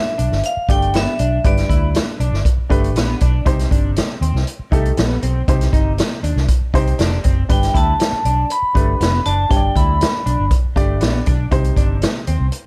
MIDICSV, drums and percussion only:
0, 0, Header, 1, 2, 480
1, 0, Start_track
1, 0, Tempo, 503356
1, 1380, Time_signature, 4, 2, 24, 8
1, 12075, End_track
2, 0, Start_track
2, 0, Title_t, "Drums"
2, 178, Note_on_c, 9, 42, 69
2, 274, Note_off_c, 9, 42, 0
2, 306, Note_on_c, 9, 38, 32
2, 402, Note_off_c, 9, 38, 0
2, 413, Note_on_c, 9, 42, 67
2, 509, Note_off_c, 9, 42, 0
2, 654, Note_on_c, 9, 36, 82
2, 663, Note_on_c, 9, 42, 67
2, 750, Note_off_c, 9, 36, 0
2, 758, Note_off_c, 9, 42, 0
2, 783, Note_on_c, 9, 42, 41
2, 878, Note_off_c, 9, 42, 0
2, 893, Note_on_c, 9, 42, 72
2, 909, Note_on_c, 9, 38, 96
2, 988, Note_off_c, 9, 42, 0
2, 1005, Note_off_c, 9, 38, 0
2, 1134, Note_on_c, 9, 42, 73
2, 1229, Note_off_c, 9, 42, 0
2, 1378, Note_on_c, 9, 36, 102
2, 1378, Note_on_c, 9, 42, 72
2, 1474, Note_off_c, 9, 36, 0
2, 1474, Note_off_c, 9, 42, 0
2, 1500, Note_on_c, 9, 42, 55
2, 1504, Note_on_c, 9, 38, 32
2, 1596, Note_off_c, 9, 42, 0
2, 1599, Note_off_c, 9, 38, 0
2, 1617, Note_on_c, 9, 36, 82
2, 1625, Note_on_c, 9, 42, 62
2, 1712, Note_off_c, 9, 36, 0
2, 1720, Note_off_c, 9, 42, 0
2, 1856, Note_on_c, 9, 42, 83
2, 1872, Note_on_c, 9, 38, 106
2, 1951, Note_off_c, 9, 42, 0
2, 1967, Note_off_c, 9, 38, 0
2, 2101, Note_on_c, 9, 42, 60
2, 2196, Note_off_c, 9, 42, 0
2, 2230, Note_on_c, 9, 38, 30
2, 2326, Note_off_c, 9, 38, 0
2, 2338, Note_on_c, 9, 36, 85
2, 2341, Note_on_c, 9, 42, 77
2, 2433, Note_off_c, 9, 36, 0
2, 2436, Note_off_c, 9, 42, 0
2, 2578, Note_on_c, 9, 36, 82
2, 2590, Note_on_c, 9, 42, 60
2, 2674, Note_off_c, 9, 36, 0
2, 2686, Note_off_c, 9, 42, 0
2, 2710, Note_on_c, 9, 42, 43
2, 2805, Note_off_c, 9, 42, 0
2, 2820, Note_on_c, 9, 42, 75
2, 2836, Note_on_c, 9, 38, 93
2, 2916, Note_off_c, 9, 42, 0
2, 2932, Note_off_c, 9, 38, 0
2, 3057, Note_on_c, 9, 42, 73
2, 3066, Note_on_c, 9, 36, 84
2, 3152, Note_off_c, 9, 42, 0
2, 3161, Note_off_c, 9, 36, 0
2, 3300, Note_on_c, 9, 36, 100
2, 3300, Note_on_c, 9, 42, 72
2, 3395, Note_off_c, 9, 36, 0
2, 3395, Note_off_c, 9, 42, 0
2, 3426, Note_on_c, 9, 42, 55
2, 3429, Note_on_c, 9, 38, 31
2, 3521, Note_off_c, 9, 42, 0
2, 3525, Note_off_c, 9, 38, 0
2, 3540, Note_on_c, 9, 36, 84
2, 3547, Note_on_c, 9, 42, 70
2, 3635, Note_off_c, 9, 36, 0
2, 3643, Note_off_c, 9, 42, 0
2, 3780, Note_on_c, 9, 42, 86
2, 3796, Note_on_c, 9, 38, 108
2, 3875, Note_off_c, 9, 42, 0
2, 3891, Note_off_c, 9, 38, 0
2, 4028, Note_on_c, 9, 42, 65
2, 4123, Note_off_c, 9, 42, 0
2, 4156, Note_on_c, 9, 38, 33
2, 4252, Note_off_c, 9, 38, 0
2, 4262, Note_on_c, 9, 42, 69
2, 4358, Note_off_c, 9, 42, 0
2, 4500, Note_on_c, 9, 36, 86
2, 4510, Note_on_c, 9, 42, 62
2, 4595, Note_off_c, 9, 36, 0
2, 4606, Note_off_c, 9, 42, 0
2, 4628, Note_on_c, 9, 42, 40
2, 4724, Note_off_c, 9, 42, 0
2, 4741, Note_on_c, 9, 42, 77
2, 4757, Note_on_c, 9, 38, 102
2, 4836, Note_off_c, 9, 42, 0
2, 4853, Note_off_c, 9, 38, 0
2, 4983, Note_on_c, 9, 42, 71
2, 5078, Note_off_c, 9, 42, 0
2, 5226, Note_on_c, 9, 36, 108
2, 5227, Note_on_c, 9, 42, 82
2, 5321, Note_off_c, 9, 36, 0
2, 5323, Note_off_c, 9, 42, 0
2, 5349, Note_on_c, 9, 42, 59
2, 5352, Note_on_c, 9, 38, 31
2, 5444, Note_off_c, 9, 42, 0
2, 5447, Note_off_c, 9, 38, 0
2, 5464, Note_on_c, 9, 36, 85
2, 5469, Note_on_c, 9, 42, 64
2, 5559, Note_off_c, 9, 36, 0
2, 5564, Note_off_c, 9, 42, 0
2, 5704, Note_on_c, 9, 42, 86
2, 5720, Note_on_c, 9, 38, 111
2, 5800, Note_off_c, 9, 42, 0
2, 5815, Note_off_c, 9, 38, 0
2, 5948, Note_on_c, 9, 42, 70
2, 6043, Note_off_c, 9, 42, 0
2, 6074, Note_on_c, 9, 38, 31
2, 6170, Note_off_c, 9, 38, 0
2, 6183, Note_on_c, 9, 42, 73
2, 6184, Note_on_c, 9, 36, 82
2, 6278, Note_off_c, 9, 42, 0
2, 6279, Note_off_c, 9, 36, 0
2, 6425, Note_on_c, 9, 36, 82
2, 6436, Note_on_c, 9, 42, 63
2, 6520, Note_off_c, 9, 36, 0
2, 6531, Note_off_c, 9, 42, 0
2, 6554, Note_on_c, 9, 42, 40
2, 6650, Note_off_c, 9, 42, 0
2, 6663, Note_on_c, 9, 42, 72
2, 6680, Note_on_c, 9, 38, 100
2, 6759, Note_off_c, 9, 42, 0
2, 6775, Note_off_c, 9, 38, 0
2, 6903, Note_on_c, 9, 42, 73
2, 6913, Note_on_c, 9, 36, 88
2, 6998, Note_off_c, 9, 42, 0
2, 7008, Note_off_c, 9, 36, 0
2, 7148, Note_on_c, 9, 36, 97
2, 7148, Note_on_c, 9, 42, 78
2, 7243, Note_off_c, 9, 36, 0
2, 7244, Note_off_c, 9, 42, 0
2, 7275, Note_on_c, 9, 42, 57
2, 7278, Note_on_c, 9, 38, 32
2, 7370, Note_off_c, 9, 42, 0
2, 7373, Note_off_c, 9, 38, 0
2, 7386, Note_on_c, 9, 36, 83
2, 7391, Note_on_c, 9, 42, 70
2, 7481, Note_off_c, 9, 36, 0
2, 7486, Note_off_c, 9, 42, 0
2, 7627, Note_on_c, 9, 42, 92
2, 7642, Note_on_c, 9, 38, 106
2, 7722, Note_off_c, 9, 42, 0
2, 7738, Note_off_c, 9, 38, 0
2, 7869, Note_on_c, 9, 42, 68
2, 7964, Note_off_c, 9, 42, 0
2, 8106, Note_on_c, 9, 42, 70
2, 8202, Note_off_c, 9, 42, 0
2, 8346, Note_on_c, 9, 36, 83
2, 8358, Note_on_c, 9, 42, 64
2, 8441, Note_off_c, 9, 36, 0
2, 8454, Note_off_c, 9, 42, 0
2, 8589, Note_on_c, 9, 42, 79
2, 8606, Note_on_c, 9, 38, 96
2, 8685, Note_off_c, 9, 42, 0
2, 8701, Note_off_c, 9, 38, 0
2, 8826, Note_on_c, 9, 42, 73
2, 8921, Note_off_c, 9, 42, 0
2, 9066, Note_on_c, 9, 36, 98
2, 9069, Note_on_c, 9, 42, 77
2, 9161, Note_off_c, 9, 36, 0
2, 9164, Note_off_c, 9, 42, 0
2, 9303, Note_on_c, 9, 36, 86
2, 9309, Note_on_c, 9, 42, 60
2, 9398, Note_off_c, 9, 36, 0
2, 9404, Note_off_c, 9, 42, 0
2, 9545, Note_on_c, 9, 42, 88
2, 9561, Note_on_c, 9, 38, 108
2, 9641, Note_off_c, 9, 42, 0
2, 9656, Note_off_c, 9, 38, 0
2, 9789, Note_on_c, 9, 42, 66
2, 9884, Note_off_c, 9, 42, 0
2, 10020, Note_on_c, 9, 42, 75
2, 10021, Note_on_c, 9, 36, 86
2, 10115, Note_off_c, 9, 42, 0
2, 10116, Note_off_c, 9, 36, 0
2, 10261, Note_on_c, 9, 36, 76
2, 10269, Note_on_c, 9, 42, 66
2, 10356, Note_off_c, 9, 36, 0
2, 10365, Note_off_c, 9, 42, 0
2, 10497, Note_on_c, 9, 42, 75
2, 10513, Note_on_c, 9, 38, 101
2, 10592, Note_off_c, 9, 42, 0
2, 10608, Note_off_c, 9, 38, 0
2, 10738, Note_on_c, 9, 42, 70
2, 10748, Note_on_c, 9, 36, 88
2, 10833, Note_off_c, 9, 42, 0
2, 10843, Note_off_c, 9, 36, 0
2, 10981, Note_on_c, 9, 36, 97
2, 10981, Note_on_c, 9, 42, 71
2, 11076, Note_off_c, 9, 42, 0
2, 11077, Note_off_c, 9, 36, 0
2, 11102, Note_on_c, 9, 42, 56
2, 11198, Note_off_c, 9, 42, 0
2, 11219, Note_on_c, 9, 36, 82
2, 11224, Note_on_c, 9, 42, 66
2, 11314, Note_off_c, 9, 36, 0
2, 11319, Note_off_c, 9, 42, 0
2, 11460, Note_on_c, 9, 42, 80
2, 11476, Note_on_c, 9, 38, 116
2, 11555, Note_off_c, 9, 42, 0
2, 11571, Note_off_c, 9, 38, 0
2, 11702, Note_on_c, 9, 42, 65
2, 11797, Note_off_c, 9, 42, 0
2, 11938, Note_on_c, 9, 42, 74
2, 12033, Note_off_c, 9, 42, 0
2, 12075, End_track
0, 0, End_of_file